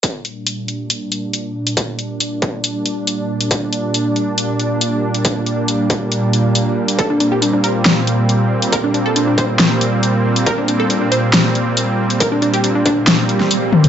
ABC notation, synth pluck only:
X:1
M:4/4
L:1/16
Q:1/4=138
K:Gm
V:1 name="Synth pluck"
z16 | z16 | z16 | z16 |
A D D G D D B8- B z | B D D A D D c8- c z | B D D A D D c8- c z | B D D G D D D8- D z |]